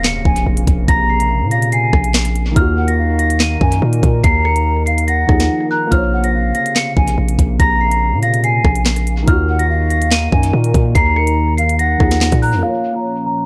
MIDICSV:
0, 0, Header, 1, 8, 480
1, 0, Start_track
1, 0, Key_signature, -5, "minor"
1, 0, Tempo, 419580
1, 1010, Time_signature, 4, 2, 24, 8
1, 15394, End_track
2, 0, Start_track
2, 0, Title_t, "Celesta"
2, 0, Program_c, 0, 8
2, 52, Note_on_c, 0, 97, 83
2, 965, Note_off_c, 0, 97, 0
2, 1010, Note_on_c, 0, 94, 119
2, 1226, Note_off_c, 0, 94, 0
2, 1253, Note_on_c, 0, 96, 66
2, 1703, Note_off_c, 0, 96, 0
2, 1732, Note_on_c, 0, 94, 86
2, 1947, Note_off_c, 0, 94, 0
2, 1974, Note_on_c, 0, 96, 84
2, 2886, Note_off_c, 0, 96, 0
2, 2932, Note_on_c, 0, 89, 103
2, 3276, Note_off_c, 0, 89, 0
2, 3292, Note_on_c, 0, 94, 77
2, 3626, Note_off_c, 0, 94, 0
2, 3648, Note_on_c, 0, 94, 83
2, 3865, Note_off_c, 0, 94, 0
2, 3893, Note_on_c, 0, 99, 85
2, 4806, Note_off_c, 0, 99, 0
2, 4846, Note_on_c, 0, 96, 115
2, 5063, Note_off_c, 0, 96, 0
2, 5091, Note_on_c, 0, 97, 78
2, 5542, Note_off_c, 0, 97, 0
2, 5562, Note_on_c, 0, 96, 85
2, 5781, Note_off_c, 0, 96, 0
2, 5808, Note_on_c, 0, 94, 88
2, 6486, Note_off_c, 0, 94, 0
2, 6530, Note_on_c, 0, 90, 79
2, 6745, Note_off_c, 0, 90, 0
2, 6767, Note_on_c, 0, 89, 105
2, 7114, Note_off_c, 0, 89, 0
2, 7140, Note_on_c, 0, 94, 74
2, 7471, Note_off_c, 0, 94, 0
2, 7491, Note_on_c, 0, 94, 88
2, 7706, Note_off_c, 0, 94, 0
2, 7731, Note_on_c, 0, 97, 85
2, 8645, Note_off_c, 0, 97, 0
2, 8690, Note_on_c, 0, 94, 121
2, 8906, Note_off_c, 0, 94, 0
2, 8932, Note_on_c, 0, 96, 65
2, 9383, Note_off_c, 0, 96, 0
2, 9412, Note_on_c, 0, 94, 90
2, 9627, Note_off_c, 0, 94, 0
2, 9655, Note_on_c, 0, 96, 88
2, 10567, Note_off_c, 0, 96, 0
2, 10613, Note_on_c, 0, 89, 104
2, 10957, Note_off_c, 0, 89, 0
2, 10973, Note_on_c, 0, 94, 80
2, 11307, Note_off_c, 0, 94, 0
2, 11329, Note_on_c, 0, 94, 80
2, 11545, Note_off_c, 0, 94, 0
2, 11573, Note_on_c, 0, 99, 88
2, 12486, Note_off_c, 0, 99, 0
2, 12526, Note_on_c, 0, 96, 118
2, 12743, Note_off_c, 0, 96, 0
2, 12771, Note_on_c, 0, 97, 81
2, 13222, Note_off_c, 0, 97, 0
2, 13242, Note_on_c, 0, 96, 83
2, 13461, Note_off_c, 0, 96, 0
2, 13489, Note_on_c, 0, 94, 91
2, 14166, Note_off_c, 0, 94, 0
2, 14210, Note_on_c, 0, 90, 76
2, 14426, Note_off_c, 0, 90, 0
2, 14447, Note_on_c, 0, 77, 101
2, 14794, Note_off_c, 0, 77, 0
2, 14820, Note_on_c, 0, 82, 72
2, 15151, Note_off_c, 0, 82, 0
2, 15171, Note_on_c, 0, 82, 84
2, 15386, Note_off_c, 0, 82, 0
2, 15394, End_track
3, 0, Start_track
3, 0, Title_t, "Flute"
3, 0, Program_c, 1, 73
3, 0, Note_on_c, 1, 77, 89
3, 247, Note_off_c, 1, 77, 0
3, 290, Note_on_c, 1, 80, 90
3, 518, Note_off_c, 1, 80, 0
3, 1010, Note_on_c, 1, 82, 117
3, 1687, Note_off_c, 1, 82, 0
3, 1730, Note_on_c, 1, 77, 82
3, 1958, Note_off_c, 1, 77, 0
3, 1970, Note_on_c, 1, 80, 92
3, 2422, Note_off_c, 1, 80, 0
3, 3170, Note_on_c, 1, 78, 94
3, 3398, Note_off_c, 1, 78, 0
3, 3410, Note_on_c, 1, 77, 90
3, 4087, Note_off_c, 1, 77, 0
3, 4131, Note_on_c, 1, 80, 90
3, 4359, Note_off_c, 1, 80, 0
3, 4850, Note_on_c, 1, 82, 111
3, 5527, Note_off_c, 1, 82, 0
3, 5571, Note_on_c, 1, 77, 88
3, 5799, Note_off_c, 1, 77, 0
3, 5811, Note_on_c, 1, 78, 100
3, 6488, Note_off_c, 1, 78, 0
3, 6531, Note_on_c, 1, 82, 80
3, 6759, Note_off_c, 1, 82, 0
3, 7011, Note_on_c, 1, 78, 79
3, 7239, Note_off_c, 1, 78, 0
3, 7251, Note_on_c, 1, 77, 91
3, 7927, Note_off_c, 1, 77, 0
3, 7970, Note_on_c, 1, 80, 92
3, 8198, Note_off_c, 1, 80, 0
3, 8690, Note_on_c, 1, 82, 114
3, 9367, Note_off_c, 1, 82, 0
3, 9410, Note_on_c, 1, 77, 85
3, 9638, Note_off_c, 1, 77, 0
3, 9650, Note_on_c, 1, 80, 92
3, 10102, Note_off_c, 1, 80, 0
3, 10851, Note_on_c, 1, 78, 90
3, 11079, Note_off_c, 1, 78, 0
3, 11090, Note_on_c, 1, 77, 91
3, 11767, Note_off_c, 1, 77, 0
3, 11811, Note_on_c, 1, 80, 90
3, 12039, Note_off_c, 1, 80, 0
3, 12531, Note_on_c, 1, 82, 110
3, 13207, Note_off_c, 1, 82, 0
3, 13250, Note_on_c, 1, 77, 89
3, 13478, Note_off_c, 1, 77, 0
3, 13490, Note_on_c, 1, 78, 103
3, 14167, Note_off_c, 1, 78, 0
3, 14210, Note_on_c, 1, 82, 83
3, 14438, Note_off_c, 1, 82, 0
3, 15394, End_track
4, 0, Start_track
4, 0, Title_t, "Felt piano"
4, 0, Program_c, 2, 0
4, 0, Control_c, 2, 64, 127
4, 0, Note_on_c, 2, 58, 64
4, 0, Note_on_c, 2, 65, 65
4, 0, Note_on_c, 2, 72, 62
4, 0, Note_on_c, 2, 73, 74
4, 2858, Note_off_c, 2, 58, 0
4, 2875, Note_off_c, 2, 65, 0
4, 2876, Note_on_c, 2, 51, 67
4, 2892, Note_off_c, 2, 72, 0
4, 2910, Note_off_c, 2, 73, 0
4, 2910, Note_on_c, 2, 63, 64
4, 2944, Control_c, 2, 64, 0
4, 2945, Note_on_c, 2, 65, 66
4, 2980, Note_on_c, 2, 66, 80
4, 3161, Control_c, 2, 64, 127
4, 5977, Note_off_c, 2, 51, 0
4, 5995, Note_off_c, 2, 63, 0
4, 6012, Note_off_c, 2, 65, 0
4, 6025, Note_on_c, 2, 51, 52
4, 6029, Note_off_c, 2, 66, 0
4, 6042, Note_on_c, 2, 63, 50
4, 6060, Note_on_c, 2, 53, 44
4, 6077, Note_on_c, 2, 68, 57
4, 6716, Note_on_c, 2, 58, 66
4, 6751, Note_on_c, 2, 65, 66
4, 6758, Note_off_c, 2, 51, 0
4, 6767, Note_off_c, 2, 63, 0
4, 6775, Note_off_c, 2, 53, 0
4, 6784, Note_off_c, 2, 68, 0
4, 6785, Control_c, 2, 64, 0
4, 6786, Note_on_c, 2, 72, 62
4, 6820, Note_on_c, 2, 73, 72
4, 6987, Control_c, 2, 64, 127
4, 10538, Note_off_c, 2, 58, 0
4, 10555, Note_off_c, 2, 65, 0
4, 10556, Note_on_c, 2, 51, 68
4, 10573, Note_off_c, 2, 72, 0
4, 10590, Note_off_c, 2, 73, 0
4, 10591, Note_on_c, 2, 63, 64
4, 10625, Note_on_c, 2, 65, 61
4, 10627, Control_c, 2, 64, 0
4, 10660, Note_on_c, 2, 66, 82
4, 10844, Control_c, 2, 64, 127
4, 13657, Note_off_c, 2, 51, 0
4, 13675, Note_off_c, 2, 63, 0
4, 13692, Note_off_c, 2, 65, 0
4, 13704, Note_on_c, 2, 51, 53
4, 13709, Note_off_c, 2, 66, 0
4, 13721, Note_on_c, 2, 63, 53
4, 13739, Note_on_c, 2, 53, 44
4, 13756, Note_on_c, 2, 68, 58
4, 14396, Note_on_c, 2, 58, 62
4, 14431, Note_on_c, 2, 65, 63
4, 14437, Note_off_c, 2, 51, 0
4, 14446, Note_off_c, 2, 63, 0
4, 14455, Note_off_c, 2, 53, 0
4, 14463, Note_off_c, 2, 68, 0
4, 14466, Control_c, 2, 64, 0
4, 14466, Note_on_c, 2, 70, 62
4, 14500, Note_on_c, 2, 73, 68
4, 14688, Control_c, 2, 64, 127
4, 15394, Note_off_c, 2, 58, 0
4, 15394, Note_off_c, 2, 65, 0
4, 15394, Note_off_c, 2, 70, 0
4, 15394, Note_off_c, 2, 73, 0
4, 15394, End_track
5, 0, Start_track
5, 0, Title_t, "Analog synth pad"
5, 0, Program_c, 3, 89
5, 0, Note_on_c, 3, 48, 95
5, 0, Note_on_c, 3, 49, 88
5, 0, Note_on_c, 3, 58, 80
5, 2892, Note_off_c, 3, 48, 0
5, 2892, Note_off_c, 3, 49, 0
5, 2892, Note_off_c, 3, 58, 0
5, 2930, Note_on_c, 3, 51, 84
5, 2931, Note_on_c, 3, 58, 80
5, 2931, Note_on_c, 3, 63, 77
5, 2931, Note_on_c, 3, 70, 96
5, 6732, Note_off_c, 3, 51, 0
5, 6732, Note_off_c, 3, 58, 0
5, 6732, Note_off_c, 3, 63, 0
5, 6732, Note_off_c, 3, 70, 0
5, 6770, Note_on_c, 3, 48, 92
5, 6770, Note_on_c, 3, 49, 86
5, 6770, Note_on_c, 3, 58, 82
5, 10572, Note_off_c, 3, 48, 0
5, 10572, Note_off_c, 3, 49, 0
5, 10572, Note_off_c, 3, 58, 0
5, 10611, Note_on_c, 3, 51, 82
5, 10611, Note_on_c, 3, 58, 77
5, 10611, Note_on_c, 3, 63, 78
5, 10611, Note_on_c, 3, 70, 95
5, 14412, Note_off_c, 3, 51, 0
5, 14412, Note_off_c, 3, 58, 0
5, 14412, Note_off_c, 3, 63, 0
5, 14412, Note_off_c, 3, 70, 0
5, 14450, Note_on_c, 3, 46, 81
5, 14450, Note_on_c, 3, 61, 73
5, 14450, Note_on_c, 3, 73, 91
5, 14451, Note_on_c, 3, 53, 77
5, 15394, Note_off_c, 3, 46, 0
5, 15394, Note_off_c, 3, 53, 0
5, 15394, Note_off_c, 3, 61, 0
5, 15394, Note_off_c, 3, 73, 0
5, 15394, End_track
6, 0, Start_track
6, 0, Title_t, "808-style bass"
6, 0, Program_c, 4, 38
6, 290, Note_on_c, 4, 34, 108
6, 521, Note_off_c, 4, 34, 0
6, 530, Note_on_c, 4, 34, 110
6, 761, Note_off_c, 4, 34, 0
6, 770, Note_on_c, 4, 34, 105
6, 1001, Note_off_c, 4, 34, 0
6, 1010, Note_on_c, 4, 34, 108
6, 1617, Note_on_c, 4, 46, 99
6, 1634, Note_off_c, 4, 34, 0
6, 2181, Note_off_c, 4, 46, 0
6, 2210, Note_on_c, 4, 34, 111
6, 2901, Note_off_c, 4, 34, 0
6, 2930, Note_on_c, 4, 39, 112
6, 4085, Note_off_c, 4, 39, 0
6, 4130, Note_on_c, 4, 42, 107
6, 4361, Note_off_c, 4, 42, 0
6, 4371, Note_on_c, 4, 46, 109
6, 4601, Note_off_c, 4, 46, 0
6, 4611, Note_on_c, 4, 46, 110
6, 4841, Note_off_c, 4, 46, 0
6, 4851, Note_on_c, 4, 39, 111
6, 6005, Note_off_c, 4, 39, 0
6, 6050, Note_on_c, 4, 39, 109
6, 6281, Note_off_c, 4, 39, 0
6, 6771, Note_on_c, 4, 34, 112
6, 7462, Note_off_c, 4, 34, 0
6, 7970, Note_on_c, 4, 34, 112
6, 8201, Note_off_c, 4, 34, 0
6, 8211, Note_on_c, 4, 34, 110
6, 8441, Note_off_c, 4, 34, 0
6, 8451, Note_on_c, 4, 34, 104
6, 8681, Note_off_c, 4, 34, 0
6, 8690, Note_on_c, 4, 34, 104
6, 9298, Note_on_c, 4, 46, 98
6, 9315, Note_off_c, 4, 34, 0
6, 9861, Note_off_c, 4, 46, 0
6, 9890, Note_on_c, 4, 34, 108
6, 10582, Note_off_c, 4, 34, 0
6, 10611, Note_on_c, 4, 39, 115
6, 11765, Note_off_c, 4, 39, 0
6, 11810, Note_on_c, 4, 42, 109
6, 12041, Note_off_c, 4, 42, 0
6, 12050, Note_on_c, 4, 46, 113
6, 12281, Note_off_c, 4, 46, 0
6, 12291, Note_on_c, 4, 46, 105
6, 12521, Note_off_c, 4, 46, 0
6, 12531, Note_on_c, 4, 39, 109
6, 13685, Note_off_c, 4, 39, 0
6, 13730, Note_on_c, 4, 39, 108
6, 14083, Note_off_c, 4, 39, 0
6, 14097, Note_on_c, 4, 46, 110
6, 14338, Note_on_c, 4, 41, 106
6, 14355, Note_off_c, 4, 46, 0
6, 14445, Note_off_c, 4, 41, 0
6, 15394, End_track
7, 0, Start_track
7, 0, Title_t, "Impact"
7, 0, Program_c, 5, 103
7, 0, Note_on_c, 5, 60, 88
7, 1011, Note_off_c, 5, 60, 0
7, 15394, End_track
8, 0, Start_track
8, 0, Title_t, "Drums"
8, 50, Note_on_c, 9, 38, 119
8, 51, Note_on_c, 9, 39, 93
8, 165, Note_off_c, 9, 38, 0
8, 166, Note_off_c, 9, 39, 0
8, 290, Note_on_c, 9, 36, 96
8, 404, Note_off_c, 9, 36, 0
8, 414, Note_on_c, 9, 42, 85
8, 528, Note_off_c, 9, 42, 0
8, 653, Note_on_c, 9, 42, 85
8, 768, Note_off_c, 9, 42, 0
8, 770, Note_on_c, 9, 36, 101
8, 774, Note_on_c, 9, 42, 75
8, 885, Note_off_c, 9, 36, 0
8, 889, Note_off_c, 9, 42, 0
8, 1010, Note_on_c, 9, 36, 123
8, 1010, Note_on_c, 9, 42, 81
8, 1125, Note_off_c, 9, 36, 0
8, 1125, Note_off_c, 9, 42, 0
8, 1374, Note_on_c, 9, 42, 79
8, 1488, Note_off_c, 9, 42, 0
8, 1730, Note_on_c, 9, 42, 76
8, 1844, Note_off_c, 9, 42, 0
8, 1857, Note_on_c, 9, 42, 91
8, 1971, Note_off_c, 9, 42, 0
8, 1971, Note_on_c, 9, 42, 73
8, 2086, Note_off_c, 9, 42, 0
8, 2210, Note_on_c, 9, 36, 96
8, 2210, Note_on_c, 9, 37, 96
8, 2324, Note_off_c, 9, 36, 0
8, 2324, Note_off_c, 9, 37, 0
8, 2334, Note_on_c, 9, 42, 82
8, 2449, Note_off_c, 9, 42, 0
8, 2451, Note_on_c, 9, 38, 127
8, 2453, Note_on_c, 9, 39, 100
8, 2566, Note_off_c, 9, 38, 0
8, 2567, Note_off_c, 9, 39, 0
8, 2574, Note_on_c, 9, 42, 86
8, 2688, Note_off_c, 9, 42, 0
8, 2695, Note_on_c, 9, 42, 77
8, 2809, Note_off_c, 9, 42, 0
8, 2930, Note_on_c, 9, 36, 127
8, 2931, Note_on_c, 9, 42, 83
8, 3045, Note_off_c, 9, 36, 0
8, 3045, Note_off_c, 9, 42, 0
8, 3294, Note_on_c, 9, 42, 81
8, 3409, Note_off_c, 9, 42, 0
8, 3650, Note_on_c, 9, 42, 81
8, 3764, Note_off_c, 9, 42, 0
8, 3777, Note_on_c, 9, 42, 92
8, 3891, Note_on_c, 9, 38, 115
8, 3892, Note_off_c, 9, 42, 0
8, 3892, Note_on_c, 9, 39, 95
8, 4005, Note_off_c, 9, 38, 0
8, 4006, Note_off_c, 9, 39, 0
8, 4130, Note_on_c, 9, 36, 96
8, 4245, Note_off_c, 9, 36, 0
8, 4255, Note_on_c, 9, 42, 87
8, 4369, Note_off_c, 9, 42, 0
8, 4494, Note_on_c, 9, 42, 87
8, 4608, Note_off_c, 9, 42, 0
8, 4611, Note_on_c, 9, 36, 103
8, 4615, Note_on_c, 9, 42, 75
8, 4725, Note_off_c, 9, 36, 0
8, 4730, Note_off_c, 9, 42, 0
8, 4851, Note_on_c, 9, 36, 122
8, 4851, Note_on_c, 9, 42, 82
8, 4965, Note_off_c, 9, 36, 0
8, 4965, Note_off_c, 9, 42, 0
8, 5091, Note_on_c, 9, 37, 67
8, 5205, Note_off_c, 9, 37, 0
8, 5215, Note_on_c, 9, 42, 78
8, 5329, Note_off_c, 9, 42, 0
8, 5570, Note_on_c, 9, 42, 77
8, 5685, Note_off_c, 9, 42, 0
8, 5698, Note_on_c, 9, 42, 93
8, 5812, Note_off_c, 9, 42, 0
8, 5812, Note_on_c, 9, 42, 71
8, 5926, Note_off_c, 9, 42, 0
8, 6050, Note_on_c, 9, 36, 98
8, 6050, Note_on_c, 9, 37, 97
8, 6165, Note_off_c, 9, 36, 0
8, 6165, Note_off_c, 9, 37, 0
8, 6175, Note_on_c, 9, 42, 78
8, 6179, Note_on_c, 9, 38, 69
8, 6289, Note_off_c, 9, 42, 0
8, 6293, Note_off_c, 9, 38, 0
8, 6771, Note_on_c, 9, 36, 121
8, 6771, Note_on_c, 9, 42, 81
8, 6885, Note_off_c, 9, 36, 0
8, 6885, Note_off_c, 9, 42, 0
8, 7135, Note_on_c, 9, 42, 76
8, 7249, Note_off_c, 9, 42, 0
8, 7490, Note_on_c, 9, 42, 77
8, 7605, Note_off_c, 9, 42, 0
8, 7618, Note_on_c, 9, 42, 93
8, 7731, Note_on_c, 9, 38, 116
8, 7732, Note_off_c, 9, 42, 0
8, 7732, Note_on_c, 9, 39, 93
8, 7845, Note_off_c, 9, 38, 0
8, 7846, Note_off_c, 9, 39, 0
8, 7970, Note_on_c, 9, 36, 96
8, 8085, Note_off_c, 9, 36, 0
8, 8095, Note_on_c, 9, 42, 83
8, 8209, Note_off_c, 9, 42, 0
8, 8334, Note_on_c, 9, 42, 83
8, 8448, Note_off_c, 9, 42, 0
8, 8451, Note_on_c, 9, 36, 104
8, 8455, Note_on_c, 9, 42, 78
8, 8565, Note_off_c, 9, 36, 0
8, 8569, Note_off_c, 9, 42, 0
8, 8691, Note_on_c, 9, 36, 124
8, 8691, Note_on_c, 9, 42, 81
8, 8805, Note_off_c, 9, 36, 0
8, 8805, Note_off_c, 9, 42, 0
8, 9055, Note_on_c, 9, 42, 77
8, 9169, Note_off_c, 9, 42, 0
8, 9410, Note_on_c, 9, 42, 76
8, 9525, Note_off_c, 9, 42, 0
8, 9538, Note_on_c, 9, 42, 87
8, 9652, Note_off_c, 9, 42, 0
8, 9652, Note_on_c, 9, 42, 72
8, 9767, Note_off_c, 9, 42, 0
8, 9890, Note_on_c, 9, 36, 92
8, 9891, Note_on_c, 9, 37, 97
8, 10005, Note_off_c, 9, 36, 0
8, 10005, Note_off_c, 9, 37, 0
8, 10015, Note_on_c, 9, 42, 80
8, 10130, Note_off_c, 9, 42, 0
8, 10132, Note_on_c, 9, 38, 127
8, 10134, Note_on_c, 9, 39, 103
8, 10247, Note_off_c, 9, 38, 0
8, 10248, Note_off_c, 9, 39, 0
8, 10254, Note_on_c, 9, 42, 85
8, 10369, Note_off_c, 9, 42, 0
8, 10376, Note_on_c, 9, 42, 76
8, 10490, Note_off_c, 9, 42, 0
8, 10611, Note_on_c, 9, 36, 121
8, 10612, Note_on_c, 9, 42, 79
8, 10725, Note_off_c, 9, 36, 0
8, 10726, Note_off_c, 9, 42, 0
8, 10976, Note_on_c, 9, 42, 77
8, 11090, Note_off_c, 9, 42, 0
8, 11331, Note_on_c, 9, 42, 74
8, 11445, Note_off_c, 9, 42, 0
8, 11458, Note_on_c, 9, 42, 90
8, 11571, Note_on_c, 9, 38, 120
8, 11573, Note_off_c, 9, 42, 0
8, 11573, Note_on_c, 9, 39, 96
8, 11686, Note_off_c, 9, 38, 0
8, 11687, Note_off_c, 9, 39, 0
8, 11810, Note_on_c, 9, 36, 98
8, 11925, Note_off_c, 9, 36, 0
8, 11935, Note_on_c, 9, 42, 88
8, 12049, Note_off_c, 9, 42, 0
8, 12174, Note_on_c, 9, 42, 85
8, 12288, Note_off_c, 9, 42, 0
8, 12291, Note_on_c, 9, 36, 105
8, 12295, Note_on_c, 9, 42, 78
8, 12405, Note_off_c, 9, 36, 0
8, 12410, Note_off_c, 9, 42, 0
8, 12531, Note_on_c, 9, 36, 125
8, 12531, Note_on_c, 9, 42, 80
8, 12645, Note_off_c, 9, 36, 0
8, 12645, Note_off_c, 9, 42, 0
8, 12771, Note_on_c, 9, 37, 63
8, 12885, Note_off_c, 9, 37, 0
8, 12895, Note_on_c, 9, 42, 79
8, 13009, Note_off_c, 9, 42, 0
8, 13250, Note_on_c, 9, 42, 77
8, 13365, Note_off_c, 9, 42, 0
8, 13377, Note_on_c, 9, 42, 87
8, 13491, Note_off_c, 9, 42, 0
8, 13491, Note_on_c, 9, 42, 71
8, 13606, Note_off_c, 9, 42, 0
8, 13730, Note_on_c, 9, 36, 92
8, 13730, Note_on_c, 9, 37, 98
8, 13844, Note_off_c, 9, 36, 0
8, 13845, Note_off_c, 9, 37, 0
8, 13854, Note_on_c, 9, 42, 77
8, 13858, Note_on_c, 9, 38, 72
8, 13969, Note_off_c, 9, 42, 0
8, 13972, Note_off_c, 9, 38, 0
8, 13972, Note_on_c, 9, 38, 127
8, 13973, Note_on_c, 9, 39, 103
8, 14086, Note_off_c, 9, 38, 0
8, 14087, Note_off_c, 9, 39, 0
8, 14094, Note_on_c, 9, 42, 87
8, 14097, Note_on_c, 9, 36, 100
8, 14208, Note_off_c, 9, 42, 0
8, 14212, Note_off_c, 9, 36, 0
8, 14215, Note_on_c, 9, 46, 54
8, 14330, Note_off_c, 9, 46, 0
8, 15394, End_track
0, 0, End_of_file